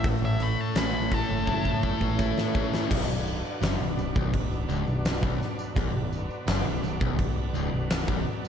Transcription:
0.00 0.14 A1 medium
0.00 2.88 C#4 medium
0.00 2.87 E4 medium
0.00 2.88 A4 medium
0.00 2.87 C#5 medium
0.04 1.84 A2 medium
0.04 kick loud
0.04 open hi-hat medium
0.21 0.37 A1 loud
0.25 0.41 E5 medium
0.39 0.55 A1 medium
0.39 2.19 A3 medium
0.39 0.61 B5 loud
0.39 open hi-hat medium
0.61 0.77 A5 loud
0.75 1.22 A1 medium
0.75 2.17 A3 medium
0.75 2.54 C#4 medium
0.75 1.12 B5 loud
0.75 snare loud
0.75 open hi-hat medium
0.75 tambourine loud
1.11 1.81 E4 medium
1.11 1.83 A4 medium
1.11 1.83 A5 loud
1.11 kick medium
1.11 open hi-hat medium
1.29 1.45 F#1 medium
1.47 1.93 F#1 loud
1.47 2.18 E4 medium
1.47 2.91 A4 medium
1.47 kick medium
1.65 kick medium
1.82 2.90 E4 medium
1.82 2.91 A4 medium
1.82 kick medium
2.01 2.32 A1 medium
2.01 kick medium
2.19 2.90 A3 medium
2.19 2.91 E4 medium
2.19 kick medium
2.19 tambourine loud
2.38 snare medium
2.55 2.91 C#4 medium
2.55 kick loud
2.74 snare medium
2.90 3.07 B0 medium
2.90 3.07 B1 loud
2.90 5.74 D4 medium
2.90 5.73 F#4 medium
2.90 5.74 B4 medium
2.90 5.73 D5 medium
2.90 kick loud
2.90 crash loud
2.90 crash medium
3.08 3.41 B0 medium
3.08 3.37 B1 medium
3.27 tambourine medium
3.45 tambourine soft
3.62 3.79 F#1 medium
3.62 3.79 F#2 loud
3.62 snare loud
3.62 tambourine loud
3.62 crash medium
3.79 3.96 B0 medium
3.79 3.96 B1 medium
3.98 4.14 B0 medium
3.98 4.14 B1 medium
3.98 tambourine medium
4.15 4.32 B0 medium
4.15 4.32 B1 loud
4.15 kick loud
4.33 4.67 B0 medium
4.33 4.62 B1 medium
4.33 kick medium
4.33 crash medium
4.52 tambourine soft
4.69 4.86 C#1 medium
4.69 4.86 C#2 loud
4.69 tambourine medium
4.87 5.20 B0 medium
4.87 5.15 B1 medium
4.87 tambourine soft
5.05 snare loud
5.05 tambourine medium
5.05 crash medium
5.23 5.39 B0 medium
5.23 5.40 B1 loud
5.23 kick loud
5.23 tambourine soft
5.41 snare soft
5.41 tambourine soft
5.59 tambourine medium
5.75 5.93 B0 medium
5.75 5.93 B1 loud
5.75 8.48 F#4 medium
5.75 8.48 B4 medium
5.75 8.48 D5 medium
5.75 kick loud
5.75 tambourine soft
5.75 crash medium
5.94 6.27 B0 medium
5.94 6.23 B1 medium
6.13 tambourine medium
6.30 tambourine soft
6.48 6.64 F#1 medium
6.48 6.65 F#2 loud
6.48 snare loud
6.48 tambourine loud
6.48 crash medium
6.65 6.81 B0 medium
6.65 6.82 B1 medium
6.82 6.99 B0 medium
6.82 7.00 B1 medium
6.82 tambourine medium
7.01 7.18 B0 medium
7.01 7.18 B1 loud
7.01 kick loud
7.19 7.52 B0 medium
7.19 7.48 B1 medium
7.19 kick medium
7.19 crash medium
7.38 tambourine soft
7.54 7.72 C#1 loud
7.54 7.71 C#2 loud
7.54 tambourine medium
7.73 8.06 B0 medium
7.73 8.01 B1 medium
7.90 snare loud
7.90 tambourine medium
7.90 crash medium
8.08 8.25 B0 medium
8.08 8.25 B1 loud
8.08 kick loud
8.08 tambourine soft
8.27 tambourine soft
8.45 tambourine medium

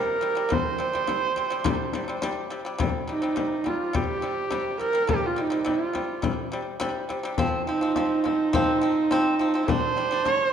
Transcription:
0.00 0.15 C3 medium
0.00 0.16 G3 loud
0.00 0.55 A#4 medium
0.21 0.33 C3 medium
0.21 0.33 G3 medium
0.35 0.47 C3 medium
0.35 0.48 G3 medium
0.49 0.72 C3 medium
0.49 0.73 G3 medium
0.49 frame drum medium
0.53 2.24 C5 medium
0.78 0.90 C3 medium
0.78 0.91 G3 medium
0.93 1.05 C3 medium
0.93 1.06 G3 medium
0.93 frame drum soft
1.07 1.30 C3 medium
1.07 1.31 G3 medium
1.07 frame drum medium
1.36 1.48 C3 medium
1.36 1.48 G3 medium
1.36 frame drum soft
1.50 1.62 C3 medium
1.50 1.63 G3 medium
1.64 1.88 C3 loud
1.64 1.88 G3 loud
1.64 frame drum medium
1.93 2.05 C3 medium
1.93 2.06 G3 medium
1.93 frame drum medium
2.08 2.19 C3 medium
2.08 2.20 G3 medium
2.08 frame drum soft
2.22 2.45 C3 loud
2.22 2.46 G3 loud
2.22 frame drum medium
2.50 2.62 C3 medium
2.50 2.63 G3 medium
2.65 2.77 C3 medium
2.65 2.77 G3 medium
2.78 3.02 C3 loud
2.78 3.03 G3 loud
2.78 frame drum medium
3.07 3.19 C3 medium
3.07 3.20 G3 medium
3.07 3.69 D#4 medium
3.07 frame drum soft
3.22 3.34 C3 medium
3.22 3.34 G3 medium
3.36 3.59 C3 medium
3.36 3.60 G3 medium
3.36 frame drum medium
3.64 3.88 C3 medium
3.64 3.89 G3 medium
3.64 3.97 F4 medium
3.64 frame drum medium
3.93 4.17 C3 medium
3.93 4.17 G3 loud
3.93 4.80 G4 medium
3.93 frame drum medium
4.22 4.45 C3 medium
4.22 4.46 G3 medium
4.22 frame drum soft
4.51 4.74 C3 medium
4.51 4.75 G3 loud
4.51 frame drum soft
4.79 4.91 C3 medium
4.79 4.92 G3 medium
4.79 5.11 A#4 medium
4.79 frame drum soft
4.93 5.05 C3 medium
4.93 5.06 G3 medium
5.07 5.31 C3 medium
5.07 5.32 G3 medium
5.07 5.28 G4 medium
5.07 frame drum medium
5.26 5.43 F4 medium
5.36 5.48 C3 medium
5.36 5.49 G3 medium
5.36 frame drum soft
5.41 5.71 D#4 medium
5.50 5.62 C3 medium
5.50 5.63 G3 medium
5.64 5.88 C3 medium
5.64 5.89 G3 medium
5.64 frame drum medium
5.70 6.25 F4 medium
5.93 6.17 C3 medium
5.93 6.18 G3 medium
5.93 frame drum soft
6.22 6.46 C3 medium
6.22 6.46 G3 loud
6.22 frame drum medium
6.52 6.75 C3 medium
6.52 6.76 G3 medium
6.52 frame drum soft
6.80 7.03 C3 loud
6.80 7.04 G3 loud
6.80 frame drum medium
7.09 7.21 C3 medium
7.09 7.21 G3 medium
7.09 frame drum soft
7.23 7.35 C3 medium
7.23 7.36 G3 medium
7.38 7.61 F3 medium
7.38 7.62 C4 loud
7.38 frame drum medium
7.67 7.79 F3 medium
7.67 7.79 C4 medium
7.67 9.70 D#4 medium
7.67 frame drum soft
7.81 7.93 F3 medium
7.81 7.93 C4 medium
7.96 8.19 F3 medium
7.96 8.19 C4 medium
7.96 frame drum medium
8.24 8.47 F3 medium
8.24 8.48 C4 medium
8.24 frame drum medium
8.53 8.76 F3 loud
8.53 8.77 C4 loud
8.53 frame drum medium
8.81 9.05 F3 medium
8.81 9.05 C4 medium
8.81 frame drum soft
9.11 9.34 F3 loud
9.11 9.34 C4 loud
9.11 frame drum medium
9.39 9.51 F3 medium
9.39 9.52 C4 medium
9.39 frame drum soft
9.54 9.65 F3 medium
9.54 9.66 C4 medium
9.68 9.91 G3 medium
9.68 9.92 D4 medium
9.68 10.30 C5 loud
9.68 frame drum medium
9.97 10.08 G3 medium
9.97 10.09 D4 medium
9.97 frame drum soft
10.11 10.23 G3 medium
10.11 10.23 D4 medium
10.25 10.49 G3 medium
10.25 10.49 D4 medium
10.25 frame drum medium
10.30 10.47 C#5 loud
10.47 10.53 C5 loud

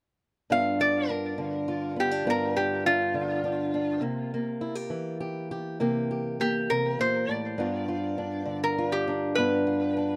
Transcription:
0.50 2.24 G2 medium
0.50 1.95 B3 medium
0.50 1.08 D4 medium
0.50 0.79 F4 medium
0.50 0.79 F5 medium
0.80 1.67 F4 medium
0.80 1.08 D5 medium
1.08 1.96 D4 medium
1.08 1.94 A#4 medium
1.38 3.13 D3 medium
1.68 2.26 F4 medium
1.96 2.11 B3 medium
1.96 2.27 G4 medium
2.11 2.26 D4 soft
2.25 4.00 G2 medium
2.25 4.01 B3 medium
2.25 2.85 D4 medium
2.25 2.56 F4 medium
2.30 2.57 A#4 medium
2.57 4.01 F4 medium
2.57 2.85 G4 medium
2.86 3.43 D4 medium
2.86 4.01 F4 medium
3.14 4.03 D3 medium
3.44 3.73 D4 medium
3.74 4.00 D4 medium
4.01 4.91 C3 medium
4.01 4.33 A#3 medium
4.34 5.79 A#3 medium
4.61 4.75 E4 medium
4.75 5.19 G4 medium
4.90 7.54 E3 medium
5.20 5.51 G4 medium
5.51 5.81 G4 medium
5.80 6.69 C3 medium
5.80 6.39 A#3 medium
5.80 6.10 G4 medium
6.11 7.60 G4 medium
6.40 7.55 A#3 medium
6.40 6.69 G4 medium
6.70 6.99 C3 medium
6.70 6.99 A#4 medium
6.99 7.28 A#2 medium
6.99 7.31 C5 medium
7.29 7.59 A2 medium
7.29 8.59 D5 medium
7.58 9.37 G2 medium
7.58 9.38 B3 medium
7.58 8.18 D4 medium
7.58 7.88 F4 medium
7.88 8.78 F4 medium
8.18 9.07 D4 medium
8.46 10.16 D3 medium
8.64 8.92 A#4 medium
8.79 9.39 F4 medium
8.92 9.35 G4 medium
9.08 9.38 D4 medium
9.35 10.16 G2 medium
9.35 10.16 B3 medium
9.35 9.96 D4 medium
9.35 9.66 F4 medium
9.35 10.16 B4 medium
9.67 10.16 F4 medium
9.97 10.16 D4 medium

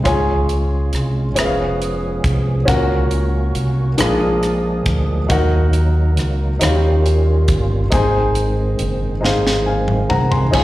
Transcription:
0.00 2.64 G#3 medium
0.00 3.94 C#4 soft
0.00 1.25 F4 medium
0.04 0.89 C#2 medium
0.04 1.33 C#4 medium
0.04 1.35 F4 medium
0.04 1.26 G#4 medium
0.04 1.26 C#5 medium
0.04 1.27 G#5 medium
0.04 kick medium
0.04 closed hi-hat medium
0.49 closed hi-hat soft
0.93 1.37 C2 medium
0.93 cross-stick soft
0.93 closed hi-hat soft
1.35 2.20 F1 medium
1.35 2.65 F3 soft
1.35 2.66 B3 soft
1.35 2.57 C#4 medium
1.35 2.66 G#4 medium
1.35 2.57 G#4 medium
1.35 2.58 B4 medium
1.35 closed hi-hat medium
1.39 1.44 E5 medium
1.39 cross-stick medium
1.45 2.61 F5 medium
1.82 closed hi-hat soft
2.24 2.64 C2 medium
2.24 kick medium
2.24 closed hi-hat soft
2.65 3.51 C#2 medium
2.65 3.95 A#2 medium
2.65 3.97 A#3 medium
2.65 3.87 C#4 medium
2.65 3.88 F#4 medium
2.65 3.97 F#4 medium
2.65 3.88 A#4 medium
2.65 3.89 F#5 medium
2.65 kick medium
2.65 closed hi-hat medium
3.11 closed hi-hat soft
3.55 3.96 C2 medium
3.55 closed hi-hat soft
3.98 4.82 A#1 medium
3.98 5.26 A#2 medium
3.98 5.28 F3 medium
3.98 5.28 G#3 soft
3.98 7.87 A#3 soft
3.98 5.19 D4 medium
3.98 5.28 D4 soft
3.98 5.28 G#4 medium
3.98 5.19 G#4 medium
3.98 5.19 A#4 medium
3.98 5.20 F5 medium
3.98 cross-stick medium
3.98 closed hi-hat medium
4.43 cross-stick soft
4.43 closed hi-hat soft
4.86 5.26 D2 medium
4.86 kick medium
4.86 closed hi-hat soft
5.28 6.18 D#2 medium
5.28 6.57 D#3 medium
5.28 6.59 F#3 soft
5.28 6.49 D#4 medium
5.28 6.59 D#4 medium
5.28 6.50 F#4 medium
5.28 6.51 A#4 medium
5.28 6.51 F#5 medium
5.28 kick medium
5.28 closed hi-hat medium
5.73 closed hi-hat soft
6.17 6.58 C#2 medium
6.17 cross-stick soft
6.17 closed hi-hat soft
6.59 7.44 D#2 medium
6.59 7.88 D#3 medium
6.59 10.50 D#3 medium
6.59 7.91 G3 medium
6.59 7.91 C#4 soft
6.59 7.80 D#4 medium
6.59 7.91 F4 medium
6.59 6.67 F#4 soft
6.59 7.81 C#5 medium
6.59 7.82 F5 medium
6.59 cross-stick medium
6.59 closed hi-hat medium
6.66 7.84 G4 medium
7.06 closed hi-hat soft
7.48 7.88 G1 medium
7.48 kick medium
7.48 closed hi-hat soft
7.90 8.75 G#1 medium
7.90 9.19 G#2 medium
7.90 10.50 G#3 soft
7.90 10.50 C4 medium
7.90 9.11 D#4 medium
7.90 9.12 G#4 medium
7.90 9.12 C5 medium
7.90 9.13 G#5 medium
7.90 kick medium
7.90 closed hi-hat medium
8.35 closed hi-hat soft
8.79 9.23 F#1 medium
8.79 closed hi-hat soft
9.21 10.06 G#1 medium
9.21 10.42 D#4 medium
9.21 10.42 G#4 medium
9.21 10.43 C5 medium
9.21 9.66 F5 medium
9.21 snare soft
9.47 snare soft
9.66 10.08 F5 soft
9.66 10.07 G#5 soft
9.88 mid tom medium
10.09 10.50 C2 medium
10.09 10.30 F#5 soft
10.09 10.30 A#5 medium
10.09 floor tom medium
10.31 10.53 G#5 soft
10.31 10.64 C6 soft
10.31 floor tom medium
10.51 10.64 C#2 medium
10.51 10.64 F3 medium
10.51 10.64 G#3 soft
10.51 10.64 C#4 medium
10.51 10.58 D#4 medium
10.51 10.64 G#4 medium
10.51 10.64 C#5 medium
10.51 10.64 G#5 medium
10.51 kick medium
10.51 crash medium
10.58 10.64 F4 medium

